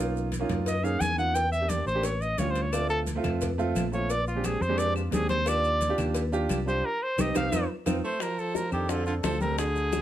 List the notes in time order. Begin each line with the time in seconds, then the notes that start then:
Already playing: B1 A#3 C#4 D#4 F4
0.15 high conga, maracas
0.32 cowbell, high conga, maracas
0.39 A#3 C#4 D#4 F4
0.49 F#2, cowbell, high conga, low conga, maracas
0.66 D#5, cowbell, high conga, maracas
0.83 A#3 C#4 D#4 G#4 F5, high conga, maracas
1.00 E2 G#5, cowbell, high conga, maracas
1.17 A#3 C#4 D#4 F4 F#5, maracas
1.35 G5, cowbell, high conga, maracas
1.52 E5, high conga, maracas
1.60 A#3 D4 G4
1.69 D5, cowbell, high conga, maracas
1.86 A1 C5, high conga, maracas
1.94 A#3 D4 G4
2.03 C#5, cowbell, high conga, maracas
2.21 D#5, high conga, maracas
2.38 D2 G3 C#4 F4 C#5, cowbell, high conga, maracas
2.50 C5
2.56 cowbell, maracas
2.62 C#5
2.72 A3 C4 F4 D5, cowbell, high conga, claves, maracas
2.90 A4, high conga, maracas
3.06 cowbell, high conga, maracas
3.15 A3 C4 F4
3.24 F2, cowbell, high conga, low conga, claves, maracas
3.41 cowbell, high conga, low conga, maracas
3.58 A3 C4 F4, high conga, maracas
3.75 A#1, cowbell, high conga, claves, maracas
3.92 A3 C4 F4 C#5, high conga, maracas
4.10 D5, cowbell, high conga, maracas
4.27 F4, high conga, maracas
4.35 G#3 C4 D4 G4
4.44 G#4, cowbell, high conga, claves, maracas
4.61 F2 C5, high conga, maracas
4.69 G#3 C4 D4 G4
4.78 D5, cowbell, high conga, maracas
4.96 F4, high conga, claves, maracas
5.11 D#2 G#3 C4 D4 G4 G#4, cowbell, high conga, maracas
5.29 C5, cowbell, high conga, maracas
5.45 D4 F4 G4 D5, cowbell, claves, maracas
5.64 high conga, maracas
5.81 cowbell, high conga, maracas
5.89 D4 F4 G4
5.98 D#2, cowbell, high conga, low conga, claves, maracas
6.15 cowbell, high conga, maracas
6.32 D4 F4 G4, high conga, maracas
6.49 C2, cowbell, high conga, claves, maracas
6.66 D4 F4 G4 C5, high conga, maracas
6.85 A#4
7.03 C5
7.18 C2 C4 D#4 G4 D#5, cowbell, high conga, claves, maracas
7.35 C2 C4 D#4 G4 F5, cowbell, high conga, claves, maracas
7.52 F2 C4 D#4 F4, cowbell, high conga, claves, maracas
7.86 F2 C4 D#4 F4, cowbell, high conga, claves, maracas
8.04 A3 C5
8.20 F3 A#4, high bongo, high conga, claves, maracas
8.38 F3 A4, high conga, maracas
8.55 F3 A#4, high bongo, high conga, maracas
8.71 F2 D#3 C4 D4 G4 A4, high conga, claves, maracas
8.88 D3 C4 D4 F4 A4, high bongo, high conga, maracas
9.06 D3 F4, high conga, maracas
9.23 D2 F3 A4, high bongo, low bongo, high conga, claves, maracas
9.40 G3 C4 D4 A4 A#4, high conga, maracas
9.58 D3 G#4, high bongo, high conga, maracas
9.75 high bongo, high conga, maracas
9.93 high bongo, high conga, claves, maracas